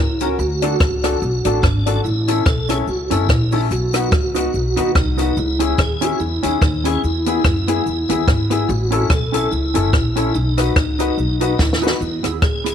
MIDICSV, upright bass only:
0, 0, Header, 1, 2, 480
1, 0, Start_track
1, 0, Key_signature, 4, "major"
1, 0, Tempo, 415225
1, 449, Time_signature, 4, 2, 24, 8
1, 14734, End_track
2, 0, Start_track
2, 0, Title_t, "Upright bass"
2, 0, Program_c, 0, 32
2, 0, Note_on_c, 0, 37, 88
2, 379, Note_off_c, 0, 37, 0
2, 448, Note_on_c, 0, 38, 107
2, 855, Note_off_c, 0, 38, 0
2, 929, Note_on_c, 0, 37, 90
2, 1336, Note_off_c, 0, 37, 0
2, 1409, Note_on_c, 0, 35, 104
2, 1638, Note_off_c, 0, 35, 0
2, 1677, Note_on_c, 0, 33, 98
2, 1855, Note_off_c, 0, 33, 0
2, 1889, Note_on_c, 0, 32, 102
2, 2295, Note_off_c, 0, 32, 0
2, 2363, Note_on_c, 0, 33, 108
2, 2772, Note_off_c, 0, 33, 0
2, 2846, Note_on_c, 0, 35, 89
2, 3253, Note_off_c, 0, 35, 0
2, 3321, Note_on_c, 0, 37, 87
2, 3552, Note_off_c, 0, 37, 0
2, 3597, Note_on_c, 0, 30, 97
2, 3806, Note_off_c, 0, 30, 0
2, 3806, Note_on_c, 0, 34, 89
2, 4213, Note_off_c, 0, 34, 0
2, 4285, Note_on_c, 0, 35, 104
2, 4765, Note_off_c, 0, 35, 0
2, 4765, Note_on_c, 0, 37, 90
2, 5173, Note_off_c, 0, 37, 0
2, 5249, Note_on_c, 0, 35, 96
2, 5477, Note_off_c, 0, 35, 0
2, 5521, Note_on_c, 0, 39, 86
2, 5696, Note_off_c, 0, 39, 0
2, 5724, Note_on_c, 0, 36, 82
2, 6132, Note_off_c, 0, 36, 0
2, 6205, Note_on_c, 0, 37, 102
2, 6613, Note_off_c, 0, 37, 0
2, 6688, Note_on_c, 0, 39, 87
2, 7095, Note_off_c, 0, 39, 0
2, 7169, Note_on_c, 0, 40, 92
2, 7397, Note_off_c, 0, 40, 0
2, 7443, Note_on_c, 0, 39, 85
2, 7618, Note_off_c, 0, 39, 0
2, 7648, Note_on_c, 0, 39, 96
2, 8054, Note_off_c, 0, 39, 0
2, 8135, Note_on_c, 0, 40, 90
2, 8538, Note_off_c, 0, 40, 0
2, 8607, Note_on_c, 0, 42, 95
2, 9014, Note_off_c, 0, 42, 0
2, 9087, Note_on_c, 0, 40, 89
2, 9316, Note_off_c, 0, 40, 0
2, 9361, Note_on_c, 0, 39, 91
2, 9537, Note_off_c, 0, 39, 0
2, 9567, Note_on_c, 0, 32, 90
2, 9974, Note_off_c, 0, 32, 0
2, 10046, Note_on_c, 0, 33, 117
2, 10453, Note_off_c, 0, 33, 0
2, 10521, Note_on_c, 0, 35, 83
2, 10931, Note_off_c, 0, 35, 0
2, 11006, Note_on_c, 0, 37, 90
2, 11236, Note_off_c, 0, 37, 0
2, 11275, Note_on_c, 0, 30, 99
2, 11483, Note_off_c, 0, 30, 0
2, 11483, Note_on_c, 0, 34, 94
2, 11892, Note_off_c, 0, 34, 0
2, 11965, Note_on_c, 0, 35, 105
2, 12373, Note_off_c, 0, 35, 0
2, 12441, Note_on_c, 0, 37, 80
2, 12851, Note_off_c, 0, 37, 0
2, 12918, Note_on_c, 0, 35, 92
2, 13330, Note_off_c, 0, 35, 0
2, 13401, Note_on_c, 0, 39, 93
2, 13812, Note_off_c, 0, 39, 0
2, 13879, Note_on_c, 0, 40, 99
2, 14113, Note_off_c, 0, 40, 0
2, 14151, Note_on_c, 0, 39, 74
2, 14333, Note_off_c, 0, 39, 0
2, 14360, Note_on_c, 0, 37, 85
2, 14734, Note_off_c, 0, 37, 0
2, 14734, End_track
0, 0, End_of_file